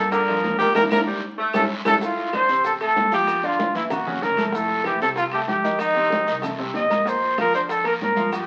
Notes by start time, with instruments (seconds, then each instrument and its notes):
Already playing: upright bass G2, grand piano A#2 A#3 A#4, trumpet A4
0.12 saxophone section D3, trumpet A#4, high bongo, high conga, high timbale, long guiro, maracas
0.27 grand piano F3 D4 F4, high bongo, high conga, high timbale, claves, maracas
0.43 upright bass E2, high bongo, low bongo, high conga, high timbale, low timbale, short guiro, maracas
0.59 grand piano A#2 A#3 A#4, saxophone section D#3, trumpet G4, high conga, short guiro, maracas
0.75 upright bass E2, grand piano A#3 D4 E4, trumpet A#4, high bongo, high conga, high timbale, long guiro, claves, maracas
0.91 upright bass E2, grand piano A#3 D4 E4, trumpet A#4, high bongo, high conga, high timbale, long guiro, claves, maracas
1.07 saxophone section G3
1.38 saxophone section A3
1.53 upright bass A1, grand piano G3 A3 C#4, trumpet A4, high bongo, high conga, high timbale, long guiro, claves, maracas
1.85 upright bass A1, grand piano G3 A3 C#4, saxophone section A3, trumpet A4, high bongo, high conga, high timbale, claves, maracas
2.01 grand piano A2 A3 A4, trumpet F4, high bongo, high conga, long guiro, maracas
2.17 high bongo, high conga, high timbale, maracas
2.33 grand piano D3 D4 D5, trumpet C5, high bongo, high conga, high timbale, short guiro, claves, maracas
2.48 upright bass A1, grand piano C3 C4 C5, high conga, short guiro, maracas
2.64 trumpet A4, high bongo, high conga, high timbale, long guiro, maracas
2.80 grand piano A3 A4 A5, trumpet A4, high bongo, high conga, high timbale, claves, maracas
2.96 upright bass G1, high bongo, low bongo, high conga, high timbale, low timbale, short guiro, maracas
3.12 grand piano F3 F4 F5, trumpet G4, high conga, short guiro, maracas
3.27 high bongo, high conga, high timbale, long guiro, claves, maracas
3.43 grand piano D3 D4 D5, trumpet F4, high bongo, high conga, high timbale, maracas
3.59 high bongo, high conga, short guiro, maracas
3.74 upright bass F#1, grand piano E3 E4 E5, trumpet E4, high bongo, high conga, high timbale, short guiro, maracas
3.90 grand piano A#3 A#4 A#5, trumpet F#4, high bongo, high conga, low conga, high timbale, long guiro, claves, maracas
4.06 upright bass F#1, grand piano C#3 C#4 C#5, high bongo, high conga, low conga, maracas
4.21 upright bass F1, trumpet A#4, high bongo, low bongo, high conga, high timbale, short guiro, maracas
4.37 grand piano A3 A4 A5, high conga, high timbale, short guiro, claves, maracas
4.47 trumpet A#4
4.53 grand piano A2 A3 A4, trumpet A4, high bongo, high conga, long guiro, maracas
4.68 high bongo, high conga, high timbale, maracas
4.84 grand piano E3 E4 E5, trumpet G4, high bongo, high conga, high timbale, short guiro, claves, maracas
5.00 upright bass C2, grand piano C3 C4 C5, trumpet A4, high bongo, high conga, short guiro, maracas
5.16 trumpet F4, high bongo, high conga, high timbale, maracas
5.32 grand piano A3 A4 A5, trumpet G4, high bongo, high conga, high timbale, claves, maracas
5.48 upright bass F2, trumpet G4, high bongo, low bongo, high conga, high timbale, short guiro, maracas
5.64 grand piano D#3 D#4 D#5, high conga, short guiro, maracas
5.79 trumpet D#4, high bongo, high conga, high timbale, long guiro, claves, maracas
5.94 grand piano C3 C4 C5, high bongo, high conga, high timbale, maracas
6.10 high bongo, high conga, short guiro, maracas
6.26 upright bass C2, grand piano D#3 D#4 D#5, high bongo, high conga, high timbale, short guiro, maracas
6.42 grand piano A3 A4 A5, high bongo, high conga, low conga, high timbale, long guiro, claves, maracas
6.58 upright bass C2, grand piano C3 C4 C5, high bongo, high conga, maracas
6.74 upright bass A#1, trumpet D#5, high bongo, low bongo, high conga, high timbale, low timbale, short guiro, maracas
6.90 grand piano A#3 A#4 A#5, high conga, high timbale, short guiro, claves, maracas
7.05 grand piano A#2 A#3 A#4, trumpet C5, high bongo, high conga, long guiro, maracas
7.21 high bongo, high conga, high timbale, maracas
7.38 grand piano F3 F4 F5, trumpet A#4, high bongo, high conga, high timbale, short guiro, claves, maracas
7.54 upright bass F2, grand piano D3 D4 D5, trumpet C5, high bongo, high conga, short guiro, maracas
7.69 trumpet A4, high bongo, high conga, high timbale, long guiro, maracas
7.84 grand piano A#3 A#4 A#5, trumpet A#4, high bongo, high conga, high timbale, claves, maracas
8.01 upright bass G2, trumpet A#4, high bongo, low bongo, high conga, high timbale, low timbale, short guiro, maracas
8.16 grand piano F3 F4 F5, high conga, short guiro, maracas
8.32 trumpet G4, high bongo, high timbale, long guiro, claves, maracas